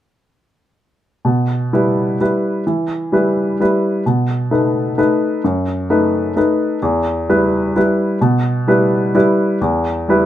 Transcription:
upright piano
1.25 B2
1.73 G3 E4 B4
2.20 G3 E4 B4
2.67 E3
3.12 G3 E4 B4
3.60 G3 E4 B4
4.06 B2
4.51 A3 D#4 B4
4.98 A3 D#4 B4
5.44 F#2
5.90 A3 D#4 B4
6.36 A3 D#4 B4
6.82 E2
7.29 G3 E4 B4
7.76 G3 E4 B4
8.21 B2
8.68 G3 E4 B4
9.15 G3 E4 B4
9.61 E2
10.09 G3 E4 B4

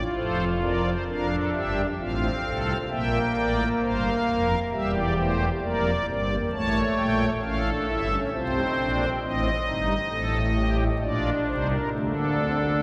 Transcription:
pipe organ
Already playing: F4
0.15 F1 F2 A4 C5
0.61 A#4 D5
0.84 C5
1.06 F1 F2 D4 A#4 F5
1.29 A4
1.53 G1 G2 G4 E5
1.98 A1 A2 C4 F4 F5
2.45 C2 C3 A4
2.90 A#1 A#2 A#3 E5 G5
3.35 A1 A2 D5
3.80 G1 G2 C5 F5
4.26 F1 F2 A#4
4.71 E1 E2 G3 G4 E5
4.94 D5
5.17 A3 C5
5.62 F1 F2 A#3 A#4 D5
6.08 G1 G2 C4 D5
6.30 A#3
6.52 A1 A2 A3 C#5 A5
6.96 A#1 A#2 G5
7.41 A1 A2 C#4 A4 F5
7.65 D4
7.87 G1 G2 E4 E5
8.09 C#4
8.32 C2 C3 C4 F4 C5
8.54 D#4
8.77 A#1 A#2 D4
9.21 A1 A2 C4 D#5
9.65 G1 G2 D#4
10.10 A1 A2 A4
10.55 G4
11.01 A#1 A#2 D4 F4 D5
11.47 C2 C3 D#4 C5
11.69 A#4
11.92 D2 D3 A3 D4 A4
11.99 G4
12.06 A4
12.14 A#3
12.37 C4
12.61 A#3

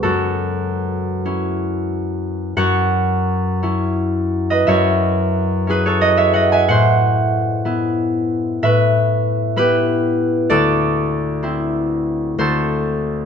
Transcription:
harp
Already playing: C#5
0.03 F#2 F#4 A4
1.25 C#4 E4
2.57 F#2 C#5 F#5
3.63 C#4 E4
4.50 B4 D#5
4.67 F#2 C#5 E5
5.67 C#4 E4 G#4 B4
5.86 A4 C#5
6.01 B4 D#5
6.17 C#5 E5
6.34 D#5 F#5
6.52 E5 G#5
6.69 A2 C5 F#5
7.65 B3 E4
8.63 A2 B4 E5
9.56 B3 E4 G4 B4
10.50 D2 A4 D5
11.43 C4 E4
12.38 D2 A4 C5

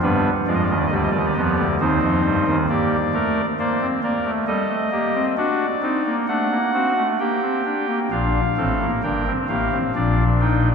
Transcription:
pipe organ
0.02 G2 G3 B3 D4 B4
0.47 F2 F3 G#3 F4 D5
0.55 D#5
0.62 D5
0.69 D#2 D#3 D#5
0.78 D5
0.86 D#5
0.91 D2 D3 G3 G4 D5
1.03 D#5
1.11 D#2 D#3 D5
1.18 D#5
1.26 D5
1.33 F2 F3 B3 D#5
1.42 D5
1.59 D2 D3
1.80 D#2 D#3 C4 D#4 C5
2.02 F2 F3
2.25 G2 G3
2.47 D#2 D#3
2.69 A#3 G4 D5
3.13 A3 A#4
3.59 A#3 C5 D5
3.81 C4
4.03 A#3 A#4 D5
4.25 A3
4.47 G3 A4 D#5
4.69 A3
4.91 A#3 G4
5.15 C4
5.37 D4 F#4 D5
5.82 C4 D#4
6.06 A#3
6.28 A3 D4 F#5
6.51 A#3
6.73 C4 F#4
6.96 A3
7.19 A#3 G4 G5
7.42 C4
7.65 D4
7.87 A#3
8.11 A#1 A#2 D4 F4 F5
8.57 A1 A2 C4 A4
8.80 A#3
9.03 G1 G2 D4 A#4 G5
9.27 C4
9.49 A1 A2 A#3 G4 F5
9.72 C4
9.95 A#1 A#2 D4 F4 D5
10.41 D#4 G5

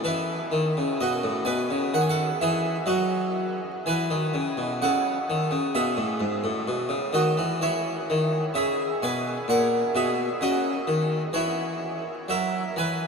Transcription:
harpsichord
0.04 E3 E4 B4
0.52 D#3
0.77 C#3
1.01 B2 F#4 D#5
1.24 A2
1.45 B2 B4 G#5
1.70 C#3
1.94 D#3 F#5
2.01 G#5
2.09 A4 F#5
2.41 E3 G#4 E5
2.86 F#3 F#4 D#5
3.86 E3 B4 G#5
4.10 D#3
4.34 C#3
4.57 B2
4.82 C#3 A4 F#5
5.30 D#3
5.51 C#3
5.75 B2 G#4 E5
5.97 A2
6.20 G#2
6.44 A2
6.68 B2
6.89 C#3
7.13 D#3 F#4 D#5
7.38 E3
7.61 E3 E4 C#5
8.10 D#3
8.54 C#3 G#4 E5
9.03 B2 B4 G#5
9.48 A#2 A#4 F#5
9.95 B2 G#4 E5
10.41 C#3 F#4 D#5
10.87 D#3
11.33 E3 E4 C#5
12.28 F#3 A#4 E5
12.76 E3 B4 G#5

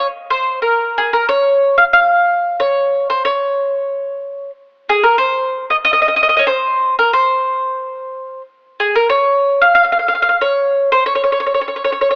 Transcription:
mandolin
0.30 C5
0.62 A#4
0.98 G#4
1.13 A#4
1.28 C#5
1.78 F5
1.93 F5
2.60 C#5
3.10 C5
3.25 C#5
4.90 G#4
5.04 A#4
5.18 C5
5.70 D#5
5.85 D#5
5.93 D#5
6.02 D#5
6.08 D#5
6.16 D#5
6.23 D#5
6.29 D#5
6.37 C#5 D#5
6.47 C5
6.99 A#4
7.13 C5
8.80 G#4
8.95 A#4
9.09 C#5
9.62 F5
9.75 F5
9.85 F5
9.92 F5
9.99 F5
10.08 F5
10.15 F5
10.22 F5
10.29 F5
10.41 C#5
10.92 C5
11.06 C#5
11.15 C#5
11.24 C#5
11.32 C#5
11.40 C#5
11.47 C#5
11.54 C#5
11.61 C#5
11.68 C#5
11.76 C#5
11.85 C#5
11.92 C#5
12.01 C#5
12.11 C#5

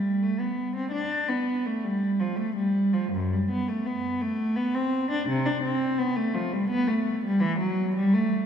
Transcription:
cello
Already playing: G3
0.22 A3
0.40 B3
0.76 C4
0.91 D4
1.29 B3
1.66 A3
1.83 G3
2.20 F3
2.36 A3
2.56 G3
2.93 F3
3.12 F#2
3.33 G3
3.51 B3
3.68 A3
3.86 B3
4.21 A3
4.56 B3
4.74 C4
5.11 D4
5.29 C3
5.46 D4
5.63 C4
5.98 B3
6.16 A3
6.34 F3
6.53 G3
6.70 B3
6.87 A3
7.25 G3
7.40 E3
7.59 F#3
7.95 G3
8.13 A3

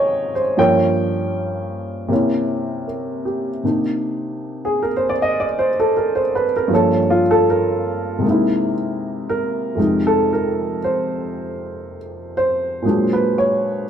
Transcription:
upright piano
Already playing: C#2 G#2 C3 D#3 F3 G3 C5 C#5 D#5 F5 G5 G#5 A#5
0.35 C5
0.57 G2 F3 A#3 C#4 A#4 C#5 G5
2.08 C3 A#3 C#4
2.13 E4
2.87 A#4
3.25 G4
3.64 C3 A#3 D4 D#4
4.65 G#4
4.83 A#4
4.96 C5
5.09 D5
5.22 D#5
5.40 D5
5.59 C5
5.80 A4
5.97 A#4
6.15 C5
6.35 B4
6.56 A#4
6.68 G2 F3 A#3
6.73 C#4 A4
6.93 C#4
7.10 F4
7.31 A4
7.50 A#4
8.19 C3 G#3
8.24 A#3 D#4
8.30 E4
9.29 A#4
9.75 F2 C3 G#3
9.80 D#4
10.07 A4
10.33 A#4
10.84 C5
12.37 C5
12.82 A#2 F#3 G#3 A#3
12.87 D4
13.13 B4
13.38 C#5

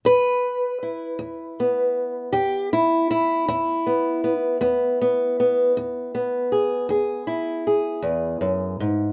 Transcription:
steel-string acoustic guitar
0.05 E2 B4
0.83 E4
1.19 E2
1.60 B3
2.33 E2 G4
2.73 E4
3.11 E4
3.48 E2 E4
3.87 B3
4.24 B3
4.61 E2 B3
5.01 B3
5.40 B3
5.77 E2
6.15 B3
6.52 G#4
6.89 E2 G#4
7.27 E4
7.67 G#4
8.02 E2
8.41 F#2
8.80 G#2

